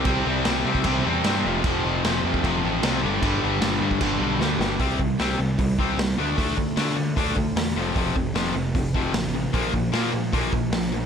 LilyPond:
<<
  \new Staff \with { instrumentName = "Distorted electric guitar" } { \clef bass \time 4/4 \key f \lydian \tempo 4 = 152 <c g c'>8 <c g c'>8 <c g c'>8 <c g c'>8 <c g c'>8 <c g c'>8 <c g c'>8 <f, c f>8 | <f, c f>8 <f, c f>8 <f, c f>8 <f, c f>8 <f, c f>8 <f, c f>8 <f, c f>8 <g, d g>8 | <g, d g>8 <g, d g>8 <g, d g>8 <g, d g>8 <g, d g>8 <g, d g>8 <g, d g>8 <g, d g>8 | <c g c'>8 <c g>8 <c g c'>8 <c g>8 <c g>8 <c g c'>8 <c g>8 <d a d'>8 |
<d a d'>8 <d a>8 <d a d'>8 <d a>8 <d a d'>8 <d a>8 <d a>8 <f, c f>8 | <f, c f>8 <f, c>8 <f, c f>8 <f, c>8 <f, c>8 <f, c f>8 <f, c>8 <f, c>8 | <bes, f bes>8 <bes, f>8 <bes, f bes>8 <bes, f>8 <bes, f bes>8 <bes, f>8 <bes, f>8 <bes, f>8 | }
  \new Staff \with { instrumentName = "Overdriven electric guitar" } { \clef bass \time 4/4 \key f \lydian <c g c'>8 <c g c'>8 <c g c'>8 <c g c'>8 <c g c'>8 <c g c'>8 <c g c'>8 <f, c f>8 | <f, c f>8 <f, c f>8 <f, c f>8 <f, c f>8 <f, c f>8 <f, c f>8 <f, c f>8 <g, d g>8 | <g, d g>8 <g, d g>8 <g, d g>8 <g, d g>8 <g, d g>8 <g, d g>8 <g, d g>8 <g, d g>8 | <c g c'>8 <c g>8 <c g c'>8 <c g>8 <c g>8 <c g c'>8 <c g>8 <d a d'>8 |
<d a d'>8 <d a>8 <d a d'>8 <d a>8 <d a d'>8 <d a>8 <d a>8 <f, c f>8 | <f, c f>8 <f, c>8 <f, c f>8 <f, c>8 <f, c>8 <f, c f>8 <f, c>8 <f, c>8 | <bes, f bes>8 <bes, f>8 <bes, f bes>8 <bes, f>8 <bes, f bes>8 <bes, f>8 <bes, f>8 <bes, f>8 | }
  \new Staff \with { instrumentName = "Overdriven electric guitar" } { \clef bass \time 4/4 \key f \lydian <c g c'>2~ <c g c'>8 <c g c'>8 <c g c'>8 <f, c f>8~ | <f, c f>2 <f, c f>8 <f, c f>4 <g, d g>8~ | <g, d g>2 <g, d g>8 <g, d g>4 r8 | r1 |
r1 | r1 | r1 | }
  \new Staff \with { instrumentName = "Picked electric bass" } { \clef bass \time 4/4 \key f \lydian c,8 c,8 c,8 c8 c,8 e,8 g,8 f,,8 | f,,8 f,,8 f,,8 f,8 f,,8 a,,8 c,8 g,,8 | g,,8 g,,8 g,,8 g,8 g,,8 b,,8 d,8 g,,8 | c,8 c,8 c,8 c,8 c,8 c,8 c,8 d,8 |
d,8 d,8 d8 d8 d,8 d,8 e,8 f,,8 | f,,8 f,,8 f,,8 f,,8 f,,8 f,,8 a,,4 | bes,,8 bes,,8 bes,8 bes,8 bes,,8 bes,,8 bes,,4 | }
  \new DrumStaff \with { instrumentName = "Drums" } \drummode { \time 4/4 <cymc bd>4 <cymc sn>8. bd16 <cymc bd>4 <cymc sn>4 | <cymc bd>4 <cymc sn>8. bd16 <cymc bd>4 <cymc sn>4 | <cymc bd>4 <cymc sn>8. bd16 <cymc bd>4 sn8 sn8 | <hho bd>8 bd8 <hho sn>4 <hho bd>8 bd8 <hho sn>4 |
<hho bd>8 bd8 <hho sn>4 <hho bd>8 bd8 <hho sn>4 | <hho bd>8 bd8 <hho sn>4 <hho bd>8 bd8 <hho sn>4 | <hho bd>8 bd8 <hho sn>4 <hho bd>8 bd8 <hho sn>4 | }
>>